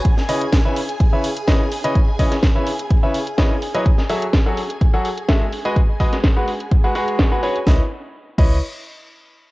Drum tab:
CC |----------------|----------------|----------------|----------------|
HH |x-oxx-oxx-oxx-ox|x-oxx-oxx-oxx-ox|x-oxx-oxx-oxx-ox|x-oxx-oxx-oxx-ox|
SD |-o--o-------o---|---oo-------o---|-o--o-------o---|---oo-------o---|
BD |o---o---o---o---|o-o-o---o---o---|o---o---o---o---|o-o-o---o---o---|

CC |------x---------|
HH |----------------|
SD |o---------------|
BD |o-----o---------|